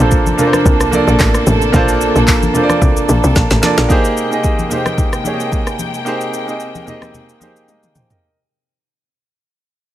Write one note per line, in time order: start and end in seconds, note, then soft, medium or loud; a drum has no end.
0.00 0.33 A#1 loud
0.00 3.86 C3 medium
0.00 0.37 A#3 medium
0.00 3.86 A#3 medium
0.00 0.38 D4 medium
0.00 3.86 D4 medium
0.00 0.39 F4 medium
0.00 0.40 A4 medium
0.00 3.86 A4 medium
0.00 0.02 C5 loud
0.00 0.32 C5 medium
0.11 kick medium
0.11 shaker medium
0.26 high conga medium
0.26 shaker soft
0.37 0.82 A#3 medium
0.37 0.83 D4 medium
0.37 0.83 F4 medium
0.37 0.84 A4 medium
0.37 0.47 A#4 medium
0.37 low conga medium
0.37 shaker medium
0.47 0.87 C5 medium
0.53 cross-stick loud
0.53 high conga medium
0.53 shaker soft
0.65 1.02 C2 medium
0.65 kick loud
0.65 low conga medium
0.65 shaker medium
0.80 cross-stick medium
0.80 shaker medium
0.91 1.58 A#3 medium
0.91 1.58 D4 medium
0.91 1.59 F4 medium
0.91 1.59 A4 medium
0.91 1.60 D5 loud
0.91 high conga medium
0.91 shaker loud
1.07 1.18 A#1 medium
1.07 shaker medium
1.20 1.43 A1 medium
1.20 kick medium
1.20 clap medium
1.20 shaker medium
1.34 cross-stick medium
1.34 shaker medium
1.47 1.70 A1 loud
1.47 high conga medium
1.47 shaker medium
1.62 shaker medium
1.73 2.10 A#1 loud
1.73 2.39 A#3 loud
1.73 2.39 D4 loud
1.73 2.40 F4 loud
1.73 2.40 A4 loud
1.73 2.41 C5 loud
1.73 kick loud
1.73 low conga medium
1.73 shaker medium
1.88 shaker medium
2.01 shaker medium
2.16 2.50 A#1 medium
2.16 shaker medium
2.27 kick medium
2.27 clap loud
2.27 shaker medium
2.43 high conga medium
2.43 shaker soft
2.54 3.41 A#3 medium
2.54 3.42 D4 medium
2.54 3.42 F4 medium
2.54 3.42 A4 medium
2.54 2.63 C5 medium
2.54 low conga medium
2.54 shaker medium
2.63 3.46 D5 loud
2.69 cross-stick medium
2.69 high conga medium
2.69 shaker soft
2.81 2.95 C2 medium
2.81 kick loud
2.81 low conga medium
2.81 shaker medium
2.97 shaker medium
3.08 3.22 A#1 loud
3.08 high conga medium
3.08 shaker loud
3.24 3.34 C2 medium
3.24 shaker medium
3.36 3.49 A#1 medium
3.36 3.86 A5 medium
3.36 kick medium
3.36 snare medium
3.36 shaker medium
3.51 3.61 A1 medium
3.51 snare medium
3.51 shaker medium
3.62 3.84 A#3 medium
3.62 3.85 D4 medium
3.62 3.85 F4 medium
3.62 3.86 A4 medium
3.62 3.86 D5 medium
3.62 snare medium
3.62 high conga medium
3.62 shaker medium
3.78 3.88 A#1 loud
3.78 snare medium
3.78 shaker medium
3.89 8.18 C3 medium
3.89 8.18 G#3 medium
3.89 4.22 A#3 loud
3.89 6.04 A#3 medium
3.89 4.23 D#4 medium
3.89 4.23 G4 medium
3.89 4.24 G#4 loud
3.89 4.24 C5 loud
3.89 8.18 G5 medium
3.89 kick loud
3.89 shaker medium
4.05 shaker medium
4.17 shaker medium
4.31 4.63 A#3 medium
4.31 4.63 D#4 medium
4.31 4.64 G4 medium
4.31 4.64 G#4 medium
4.31 4.65 D#5 medium
4.31 shaker medium
4.44 kick medium
4.44 shaker medium
4.59 high conga medium
4.59 shaker soft
4.70 5.15 A#3 medium
4.70 5.15 D#4 medium
4.70 5.15 G4 medium
4.70 5.16 G#4 medium
4.70 5.16 C5 medium
4.70 low conga medium
4.70 shaker medium
4.86 cross-stick loud
4.86 high conga medium
4.86 shaker soft
4.98 kick loud
4.98 low conga medium
4.98 shaker medium
5.13 cross-stick medium
5.13 shaker medium
5.24 5.90 A#3 medium
5.24 5.91 D#4 medium
5.24 5.91 G4 medium
5.24 5.92 G#4 medium
5.24 5.33 C#5 medium
5.24 high conga medium
5.24 shaker loud
5.34 5.95 D#5 medium
5.40 shaker medium
5.52 kick medium
5.52 shaker medium
5.67 cross-stick medium
5.67 shaker medium
5.79 high conga medium
5.79 shaker medium
5.94 shaker medium
6.05 6.38 A#3 loud
6.05 8.20 C4 medium
6.05 6.39 D#4 loud
6.05 6.39 G4 medium
6.05 6.40 G#4 loud
6.05 6.40 C5 loud
6.05 shaker medium
6.21 shaker medium
6.34 shaker medium
6.47 6.79 A#3 medium
6.47 6.80 D#4 medium
6.47 6.80 G4 medium
6.47 6.81 G#4 medium
6.47 6.81 D#5 medium
6.47 shaker medium
6.60 shaker medium
6.75 high conga medium
6.75 shaker soft
6.86 7.31 A#3 medium
6.86 7.31 D#4 medium
6.86 7.32 G4 medium
6.86 7.32 G#4 medium
6.86 7.33 D#5 loud
6.86 low conga medium
6.86 shaker medium
7.02 cross-stick medium
7.02 high conga medium
7.02 shaker soft
7.14 low conga medium
7.14 shaker medium
7.29 shaker medium
7.40 8.07 A#3 medium
7.40 8.07 D#4 medium
7.40 8.07 G4 medium
7.40 8.08 G#4 medium
7.40 7.69 C5 medium
7.40 high conga medium
7.40 shaker medium
7.56 shaker medium
7.68 7.95 A#4 medium
7.68 7.94 D#5 medium
7.68 high tom medium
7.68 shaker medium
7.83 mid tom medium
7.83 shaker medium
7.95 8.10 C5 medium
7.95 8.10 G5 medium
7.95 mid tom medium
7.95 high conga medium
7.95 shaker medium
8.10 8.37 A#4 medium
8.10 8.36 D#5 medium
8.10 floor tom medium
8.10 shaker medium